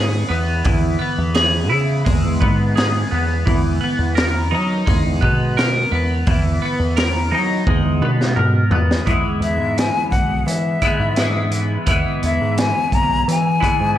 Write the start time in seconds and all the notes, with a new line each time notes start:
Already playing: G#2 G#3 B3 E4 G#4
0.29 E2 B3
0.64 E2 E3, kick, open hi-hat
0.99 B3
1.18 E2
1.34 G#4, snare, open hi-hat
1.69 C#3 E4
2.05 E2 G#3, kick, open hi-hat
2.25 E2
2.41 G#2 B3, kick
2.76 G#4, snare, open hi-hat
3.11 E2 B3
3.46 E2 E3, kick, open hi-hat
3.81 B3
3.99 E2
4.15 A#4, snare, open hi-hat
4.51 F#3 D#4
4.86 E2 G#3, kick, open hi-hat
5.05 E2
5.21 B2 B3, kick
5.57 A#4, snare, open hi-hat
5.92 E2 B3
6.27 E2 E3, kick, open hi-hat
6.62 B3
6.80 E2
6.97 A#4, snare, open hi-hat
7.32 F#3 D#4
7.67 E2 G#3, kick, high tom
7.83 E2
8.01 B2 B3, mid tom
8.21 snare
8.36 A#4, mid tom
8.70 E2 B3, floor tom
8.91 snare
9.06 E2 E3 G#3 B3 E4, kick, closed hi-hat
9.40 E2 E5, closed hi-hat
9.58 G#2
9.78 G#5, snare, closed hi-hat
10.11 B1 F#5, kick, closed hi-hat
10.46 E3 E5, closed hi-hat
10.82 E3 G#3 B3 E4, kick, closed hi-hat
11.00 G#2
11.16 E3 G#3 B3 E4, snare, closed hi-hat
11.52 closed hi-hat
11.86 E2 E3 G#3 B3 E4, kick, closed hi-hat
12.23 E2 E5, closed hi-hat
12.41 G#2
12.58 G#5, snare, closed hi-hat
12.92 B1 A#5, kick, closed hi-hat
13.28 E3 G#5, closed hi-hat
13.60 E3 G#3 B3 E4, kick, closed hi-hat
13.81 G#2